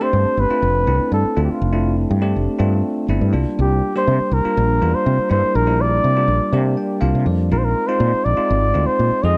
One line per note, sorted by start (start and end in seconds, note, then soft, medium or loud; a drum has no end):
0.01 0.48 A3 medium
0.01 0.48 C4 medium
0.01 0.48 D4 medium
0.01 0.48 G4 medium
0.01 0.42 C5 medium
0.13 0.24 G2 medium
0.25 muted fretless electric bass stroke soft
0.37 0.49 G1 medium
0.37 1.13 B4 medium
0.50 0.85 A3 medium
0.50 0.85 C4 medium
0.50 0.86 D4 medium
0.50 0.86 F4 medium
0.50 muted fretless electric bass stroke soft
0.62 0.84 F1 medium
0.87 0.98 C2 medium
0.87 1.34 A3 medium
0.87 1.34 C4 medium
0.87 1.34 D4 medium
0.87 1.34 E4 medium
0.99 muted fretless electric bass stroke soft
1.12 1.23 G2 medium
1.12 1.40 A4 medium
1.25 muted fretless electric bass stroke soft
1.37 1.48 D2 medium
1.37 1.71 A3 medium
1.37 1.72 C4 medium
1.37 1.72 D4 medium
1.37 1.72 F4 medium
1.44 1.52 G4 soft
1.50 1.99 F4 medium
1.50 muted fretless electric bass stroke soft
1.61 2.05 F1 medium
1.73 2.20 A3 medium
1.73 2.20 C4 medium
1.73 2.20 D4 medium
1.73 2.20 E4 medium
2.11 2.32 G2 medium
2.22 2.57 A3 medium
2.22 2.57 C4 medium
2.22 2.57 D4 medium
2.22 2.57 G4 medium
2.36 2.47 F1 medium
2.59 2.81 G2 medium
2.59 3.06 A3 medium
2.59 3.06 C4 medium
2.59 3.06 D4 medium
2.59 3.06 F4 medium
3.08 3.19 G1 medium
3.08 3.34 A3 medium
3.08 3.34 C4 medium
3.08 3.31 D4 medium
3.08 3.34 E4 medium
3.21 3.32 G2 medium
3.33 3.44 C2 medium
3.33 3.92 G3 medium
3.33 3.91 A#3 medium
3.33 3.91 D4 medium
3.33 3.91 F4 medium
3.59 3.80 C2 medium
3.59 3.94 G4 medium
3.96 4.42 G3 medium
3.96 4.42 A#3 medium
3.96 4.42 D4 medium
3.96 4.42 G4 medium
3.96 4.35 C5 medium
4.07 4.18 C3 medium
4.20 muted fretless electric bass stroke soft
4.31 4.42 C2 medium
4.31 4.96 A#4 medium
4.45 4.80 G3 medium
4.45 4.79 A#3 medium
4.45 4.80 D4 medium
4.45 4.80 F4 medium
4.45 muted fretless electric bass stroke soft
4.57 4.79 A#1 medium
4.81 4.92 E2 medium
4.81 5.28 G3 medium
4.81 5.28 A#3 medium
4.81 5.28 D4 medium
4.81 5.28 F4 medium
4.94 5.31 C5 medium
4.94 muted fretless electric bass stroke soft
5.06 5.17 C3 medium
5.18 muted fretless electric bass stroke soft
5.30 5.41 G2 medium
5.30 5.65 G3 medium
5.30 5.65 A#3 medium
5.30 5.65 D4 medium
5.30 5.65 E4 medium
5.30 5.57 C5 medium
5.44 muted fretless electric bass stroke soft
5.55 5.98 A#1 medium
5.55 5.83 A#4 medium
5.67 6.14 G3 medium
5.67 6.14 A#3 medium
5.67 6.14 D4 medium
5.67 6.14 E4 medium
5.81 6.79 D5 medium
6.04 6.26 C3 medium
6.16 6.51 G3 medium
6.16 6.52 A#3 medium
6.16 6.51 D4 medium
6.16 6.52 F4 medium
6.28 6.39 A#1 medium
6.52 6.75 C3 medium
6.52 6.99 G3 medium
6.52 7.00 A#3 medium
6.52 7.00 D4 medium
6.52 7.00 G4 medium
6.77 7.00 G5 medium
7.01 7.13 C2 medium
7.01 7.48 G3 medium
7.01 7.48 A#3 medium
7.01 7.48 D4 medium
7.01 7.48 F4 medium
7.01 7.24 F5 medium
7.15 7.25 C3 medium
7.26 7.53 F2 medium
7.26 7.50 D5 medium
7.52 7.73 A#1 medium
7.52 7.87 G#3 medium
7.52 7.87 C4 medium
7.52 7.87 D#4 medium
7.52 7.87 F4 medium
7.52 7.60 A#4 medium
7.58 7.66 C5 medium
7.65 7.89 A#4 medium
7.87 8.35 G#3 medium
7.87 8.35 C4 medium
7.87 8.35 D#4 medium
7.87 8.35 F4 medium
7.87 8.26 C5 medium
8.00 8.11 A#2 medium
8.14 muted fretless electric bass stroke soft
8.25 8.36 A#1 medium
8.25 8.88 D5 medium
8.37 8.72 G#3 medium
8.37 8.72 C4 medium
8.37 8.72 D#4 medium
8.37 8.72 F4 medium
8.37 muted fretless electric bass stroke soft
8.50 8.72 G#1 medium
8.74 8.85 D2 medium
8.74 9.21 G#3 medium
8.74 9.21 C4 medium
8.74 9.21 D#4 medium
8.74 9.21 F4 medium
8.87 9.25 C5 medium
8.87 muted fretless electric bass stroke soft
8.99 9.10 A#2 medium
9.11 muted fretless electric bass stroke soft
9.23 9.34 F2 medium
9.23 9.38 G#3 medium
9.23 9.38 C4 medium
9.23 9.38 D#4 medium
9.23 9.38 G#4 medium
9.23 9.38 D#5 medium